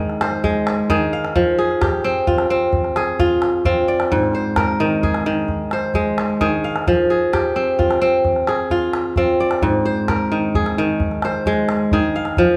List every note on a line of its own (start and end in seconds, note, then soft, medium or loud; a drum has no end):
0.00 0.95 G#2 medium
0.00 0.89 D#3 medium
0.00 0.89 G#4 medium
0.00 0.34 A#4 medium
0.10 calabash click soft
0.21 1.40 C5 medium
0.21 calabash click medium
0.44 0.95 G#3 medium
0.44 calabash thump medium
0.67 calabash click medium
0.90 1.41 D#3 medium
0.90 1.58 G#4 medium
0.90 calabash thump medium
1.13 2.13 F5 medium
1.25 calabash click soft
1.36 3.70 F3 medium
1.36 calabash thump medium
1.58 2.95 G#4 medium
1.71 calabash click soft
1.81 3.02 G4 medium
1.81 calabash thump medium
1.81 calabash click medium
2.04 2.50 C4 medium
2.27 3.19 F4 medium
2.27 calabash thump medium
2.38 calabash click soft
2.50 3.65 C4 medium
2.73 calabash thump medium
2.84 calabash click soft
2.96 4.33 G#4 medium
2.96 calabash click medium
3.19 3.65 F4 medium
3.19 calabash thump medium
3.42 calabash click medium
3.65 5.45 C4 medium
3.65 5.17 F4 medium
3.65 calabash thump medium
3.88 4.86 D5 medium
4.00 calabash click medium
4.12 6.46 G#2 medium
4.12 calabash thump medium
4.23 calabash click soft
4.33 5.53 C5 medium
4.33 calabash click soft
4.56 5.84 A#4 medium
4.56 calabash thump medium
4.56 calabash click medium
4.80 5.25 D#3 medium
5.03 6.40 G#4 medium
5.03 calabash thump medium
5.14 calabash click soft
5.26 6.40 D#3 medium
5.26 calabash click soft
5.48 calabash thump medium
5.71 6.92 C5 medium
5.71 calabash click medium
5.94 6.46 G#3 medium
5.94 calabash thump medium
6.18 calabash click medium
6.29 calabash click soft
6.41 6.92 D#3 medium
6.41 7.10 G#4 medium
6.41 calabash thump medium
6.41 calabash click soft
6.64 7.64 F5 medium
6.76 calabash click soft
6.87 9.22 F3 medium
6.87 calabash thump medium
7.10 8.47 G#4 medium
7.33 8.54 G4 medium
7.33 calabash thump medium
7.33 calabash click medium
7.56 8.01 C4 medium
7.79 8.71 F4 medium
7.79 calabash thump medium
7.91 calabash click soft
8.02 9.17 C4 medium
8.25 calabash thump medium
8.36 calabash click soft
8.47 9.85 G#4 medium
8.47 calabash click medium
8.70 9.17 F4 medium
8.70 calabash thump medium
8.93 calabash click medium
9.16 10.97 C4 medium
9.16 10.69 F4 medium
9.16 calabash thump medium
9.40 10.38 D5 medium
9.51 calabash click soft
9.62 11.97 G#2 medium
9.62 calabash thump medium
9.85 11.04 C5 medium
10.08 11.36 A#4 medium
10.08 calabash thump medium
10.08 calabash click medium
10.32 10.77 D#3 medium
10.55 11.92 G#4 medium
10.55 calabash thump medium
10.66 calabash click soft
10.78 11.92 D#3 medium
11.00 calabash thump medium
11.11 calabash click soft
11.22 12.43 C5 medium
11.22 calabash click medium
11.46 11.97 G#3 medium
11.46 calabash thump medium
11.69 calabash click medium
11.92 12.43 D#3 medium
11.92 12.57 G#4 medium
11.92 calabash thump medium
12.16 12.57 F5 medium
12.25 calabash click soft
12.37 12.57 F3 medium
12.37 calabash thump medium